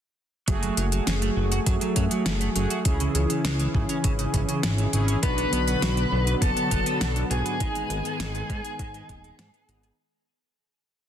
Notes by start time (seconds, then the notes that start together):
0.48 F#1 F#3 A3 F#4 G#4, kick, closed hi-hat
0.63 F#3, closed hi-hat
0.77 F#1 F#3, closed hi-hat
0.92 F#3, closed hi-hat
1.07 F#1 C#4, snare, closed hi-hat
1.22 A3, closed hi-hat
1.37 F#1 F#3
1.52 F#4, closed hi-hat
1.66 F#2 F#3, kick, closed hi-hat
1.81 F#3, closed hi-hat
1.96 F#2 F#3, kick, closed hi-hat
2.11 F#3, closed hi-hat
2.26 F#1 C#4, snare, closed hi-hat
2.41 A3, closed hi-hat
2.56 F#1 F#3 A3 F#4 G#4, closed hi-hat
2.70 F#4, closed hi-hat
2.85 C#2 C#3 E3 C#4 E4 G#4, kick, closed hi-hat
3.00 C#3, closed hi-hat
3.15 C#2 C#3, closed hi-hat
3.30 C#3, closed hi-hat
3.45 C#2 G#3, snare, closed hi-hat
3.59 E3, closed hi-hat
3.75 G#1 C#3, kick
3.89 C#4, closed hi-hat
4.04 G#1 C#3, kick, closed hi-hat
4.19 C#3, closed hi-hat
4.34 G#1 C#3, kick, closed hi-hat
4.49 C#3, closed hi-hat
4.63 G#1 G#3, snare, closed hi-hat
4.78 E3, closed hi-hat
4.93 G#1 C#3 C#4 E4 G#4, closed hi-hat
5.08 C#4, closed hi-hat
5.23 B1 B2 D3 F#3 B3 D4 F#4 B4 B5, kick, closed hi-hat
5.38 B3, closed hi-hat
5.53 B1 B3, closed hi-hat
5.68 B3, closed hi-hat
5.82 B1 F#4, snare, closed hi-hat
5.97 D4, closed hi-hat
6.12 B1 B3
6.27 B4, closed hi-hat
6.42 F#1 B3 A4 A5, kick, closed hi-hat
6.57 B3, closed hi-hat
6.71 F#1 B3, kick, closed hi-hat
6.86 B3, closed hi-hat
7.01 B1 F#4, snare, closed hi-hat
7.16 D4, closed hi-hat
7.31 B1 G#2 B3 D4 F#4 G#4 G#5, closed hi-hat
7.45 B4, closed hi-hat
7.60 G#1 G#2 D#3 G#3 B3 D#4 G#4, kick, closed hi-hat
7.75 G#3, closed hi-hat
7.90 G#1 G#3, closed hi-hat
8.05 G#3, closed hi-hat
8.20 G#1 D4, snare, closed hi-hat
8.35 B3, closed hi-hat
8.50 G#2 G#3, kick, closed hi-hat
8.64 G#4, closed hi-hat
8.79 G#2 G#3, kick, closed hi-hat
8.94 G#3, closed hi-hat
9.09 D#1 G#3, kick, closed hi-hat
9.24 G#3, closed hi-hat
9.39 G#2 D4, snare, closed hi-hat
9.54 B3, closed hi-hat
9.68 G#1 G#2 G#3 B3 D#4 G#4, closed hi-hat
9.83 G#4, closed hi-hat